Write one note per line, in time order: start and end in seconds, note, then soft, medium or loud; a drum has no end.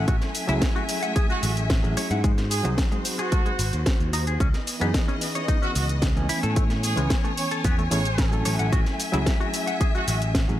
0.00 0.45 F#3 medium
0.00 0.45 A3 medium
0.00 2.22 A3 medium
0.00 0.45 C#4 medium
0.00 0.46 E4 medium
0.00 0.46 A4 medium
0.00 2.22 E5 medium
0.00 2.22 G#5 medium
0.08 0.15 F#4 medium
0.08 kick loud
0.08 closed hi-hat medium
0.08 shaker soft
0.21 snare soft
0.21 closed hi-hat soft
0.21 shaker soft
0.35 open hi-hat loud
0.35 shaker medium
0.48 0.60 C#2 loud
0.48 1.80 F#3 medium
0.48 1.80 A3 medium
0.48 1.80 C#4 medium
0.48 0.53 E4 loud
0.48 1.81 E4 medium
0.48 1.81 G#4 loud
0.48 closed hi-hat medium
0.48 shaker soft
0.62 kick loud
0.62 snare loud
0.62 closed hi-hat medium
0.62 shaker soft
0.76 0.82 F#4 medium
0.76 shaker soft
0.89 open hi-hat loud
0.89 shaker medium
1.03 1.13 F#5 medium
1.03 closed hi-hat medium
1.03 shaker soft
1.16 1.26 G#4 medium
1.16 kick loud
1.16 closed hi-hat medium
1.16 shaker soft
1.30 1.34 F#4 medium
1.30 1.38 F#4 medium
1.30 shaker soft
1.43 1.80 A1 loud
1.43 1.52 F#4 medium
1.43 open hi-hat loud
1.43 shaker medium
1.57 closed hi-hat medium
1.57 shaker soft
1.70 kick loud
1.70 snare loud
1.70 closed hi-hat medium
1.70 shaker soft
1.83 1.95 A1 medium
1.83 2.22 F#3 medium
1.83 2.22 A3 medium
1.83 2.22 C#4 medium
1.83 2.22 E4 medium
1.83 2.23 G#4 medium
1.83 shaker soft
1.97 2.07 C#5 medium
1.97 muted picked electric bass stroke soft
1.97 open hi-hat loud
1.97 shaker medium
2.11 2.61 G#2 loud
2.11 2.21 F#5 medium
2.11 closed hi-hat medium
2.11 shaker soft
2.24 2.31 G#3 medium
2.24 4.38 F#4 medium
2.24 4.38 C5 medium
2.24 kick loud
2.24 closed hi-hat medium
2.24 shaker soft
2.38 snare soft
2.38 closed hi-hat soft
2.38 shaker soft
2.51 2.64 G#4 loud
2.51 open hi-hat loud
2.51 shaker medium
2.63 2.76 C2 medium
2.63 3.55 F#3 medium
2.63 2.69 F#3 loud
2.63 3.56 C4 medium
2.63 3.56 D#4 medium
2.63 3.56 G#4 loud
2.63 closed hi-hat soft
2.63 shaker soft
2.78 kick loud
2.78 snare loud
2.78 closed hi-hat medium
2.78 shaker soft
2.92 2.98 G#3 medium
2.92 closed hi-hat soft
2.92 shaker soft
3.05 open hi-hat loud
3.05 shaker medium
3.19 3.73 F#4 medium
3.19 3.29 G#4 medium
3.19 closed hi-hat medium
3.19 shaker soft
3.32 3.42 A3 medium
3.32 kick loud
3.32 closed hi-hat medium
3.32 shaker soft
3.46 3.50 G#3 medium
3.46 closed hi-hat soft
3.46 shaker soft
3.59 3.71 G#1 loud
3.59 open hi-hat loud
3.59 shaker medium
3.73 3.84 D#2 loud
3.73 closed hi-hat soft
3.73 shaker soft
3.86 kick loud
3.86 snare loud
3.86 closed hi-hat medium
3.86 shaker soft
4.00 4.36 D#2 loud
4.00 shaker soft
4.13 4.24 D#4 medium
4.13 open hi-hat loud
4.13 shaker medium
4.27 4.37 G#4 medium
4.27 closed hi-hat medium
4.27 shaker soft
4.40 4.52 C#2 loud
4.40 6.28 E3 medium
4.40 8.42 B3 medium
4.40 4.47 C#4 medium
4.40 6.27 D#5 medium
4.40 kick loud
4.40 closed hi-hat medium
4.40 shaker soft
4.54 snare soft
4.54 closed hi-hat soft
4.54 shaker soft
4.67 open hi-hat loud
4.67 shaker medium
4.80 4.92 F#2 loud
4.80 6.12 E3 medium
4.80 6.13 B3 medium
4.80 4.85 B3 loud
4.80 6.13 C#4 medium
4.80 6.13 D#4 medium
4.80 6.13 G#4 loud
4.80 closed hi-hat medium
4.80 shaker soft
4.94 kick loud
4.94 snare loud
4.94 closed hi-hat medium
4.94 shaker soft
5.08 5.15 C#4 medium
5.08 shaker soft
5.21 open hi-hat loud
5.21 shaker medium
5.35 5.45 C#5 medium
5.35 closed hi-hat soft
5.35 shaker soft
5.48 5.59 D#4 medium
5.48 kick loud
5.48 closed hi-hat medium
5.48 shaker soft
5.62 5.66 C#4 medium
5.62 5.71 F#4 medium
5.62 shaker soft
5.75 6.13 C#2 medium
5.75 5.85 F#4 medium
5.75 open hi-hat loud
5.75 shaker medium
5.89 closed hi-hat medium
5.89 shaker soft
6.02 kick loud
6.02 snare loud
6.02 closed hi-hat medium
6.02 shaker soft
6.15 6.27 C#2 medium
6.15 6.93 E3 medium
6.15 6.94 A3 medium
6.15 6.94 B3 medium
6.15 6.94 C#4 medium
6.15 6.94 G#5 medium
6.15 shaker soft
6.29 6.40 E4 medium
6.29 8.43 C#5 medium
6.29 10.60 G#5 medium
6.29 muted picked electric bass stroke soft
6.29 open hi-hat loud
6.29 shaker medium
6.43 6.94 A2 loud
6.43 6.53 A4 medium
6.43 closed hi-hat medium
6.43 shaker soft
6.56 6.63 A3 medium
6.56 kick loud
6.56 closed hi-hat medium
6.56 shaker soft
6.70 snare soft
6.70 closed hi-hat soft
6.70 shaker soft
6.83 6.97 G#4 loud
6.83 open hi-hat loud
6.83 shaker medium
6.96 7.08 C#2 loud
6.96 7.88 E3 medium
6.96 7.01 G#3 loud
6.96 7.88 B3 medium
6.96 7.89 C#4 medium
6.96 7.89 G#5 loud
6.96 closed hi-hat soft
6.96 shaker soft
7.10 kick loud
7.10 snare loud
7.10 closed hi-hat medium
7.10 shaker soft
7.24 7.31 A3 medium
7.24 shaker soft
7.37 7.51 C#5 medium
7.37 open hi-hat loud
7.37 shaker medium
7.51 7.61 A4 medium
7.51 closed hi-hat medium
7.51 shaker soft
7.64 7.87 E2 loud
7.64 7.75 B3 medium
7.64 kick loud
7.64 closed hi-hat medium
7.64 shaker soft
7.78 7.82 A3 medium
7.78 shaker soft
7.91 8.42 A1 loud
7.91 8.03 E3 medium
7.91 8.03 A3 medium
7.91 8.03 B3 medium
7.91 8.03 C#4 medium
7.91 8.03 G#4 loud
7.91 8.32 C#5 medium
7.91 open hi-hat loud
7.91 shaker medium
8.05 closed hi-hat medium
8.05 shaker soft
8.18 kick loud
8.18 snare loud
8.18 closed hi-hat medium
8.18 shaker soft
8.31 9.10 F#3 medium
8.31 9.10 A3 medium
8.31 9.10 C#4 medium
8.31 9.10 E4 medium
8.31 9.11 A4 loud
8.31 shaker soft
8.45 8.57 A1 loud
8.45 8.56 C#5 medium
8.45 10.60 E5 loud
8.45 open hi-hat loud
8.45 shaker medium
8.59 8.70 A1 loud
8.59 8.69 F#5 medium
8.59 closed hi-hat medium
8.59 shaker soft
8.72 8.84 A1 loud
8.72 8.80 F#4 medium
8.72 kick loud
8.72 closed hi-hat medium
8.72 shaker soft
8.86 snare soft
8.86 closed hi-hat soft
8.86 shaker soft
9.00 open hi-hat loud
9.00 shaker medium
9.12 9.24 C#2 loud
9.12 10.45 F#3 medium
9.12 10.45 A3 medium
9.12 10.45 C#4 medium
9.12 9.17 E4 loud
9.12 10.46 E4 medium
9.12 10.46 G#4 loud
9.12 closed hi-hat medium
9.12 shaker soft
9.26 kick loud
9.26 snare loud
9.26 closed hi-hat medium
9.26 shaker soft
9.40 9.47 F#4 medium
9.40 shaker soft
9.54 open hi-hat loud
9.54 shaker medium
9.67 9.77 F#5 medium
9.67 closed hi-hat medium
9.67 shaker soft
9.81 9.91 G#4 medium
9.81 kick loud
9.81 closed hi-hat medium
9.81 shaker soft
9.95 10.03 F#4 medium
9.95 9.99 F#4 medium
9.95 shaker soft
10.07 10.45 A1 loud
10.07 10.16 F#4 medium
10.07 open hi-hat loud
10.07 shaker medium
10.22 closed hi-hat medium
10.22 shaker soft
10.35 kick loud
10.35 snare loud
10.35 closed hi-hat medium
10.35 shaker soft
10.48 10.60 A1 loud
10.48 10.60 F#3 medium
10.48 10.60 A3 medium
10.48 10.60 C#4 medium
10.48 10.60 E4 medium
10.48 10.60 G#4 medium
10.48 shaker soft